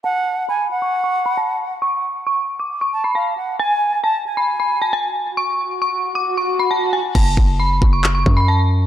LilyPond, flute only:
\new Staff \with { instrumentName = "Flute" } { \time 4/4 \key fis \minor \tempo 4 = 135 fis''4 gis''8 fis''2~ fis''8 | r2 r8 a''8 eis''8 fis''8 | gis''4 a''8 gis''2~ gis''8 | r1 |
r1 | }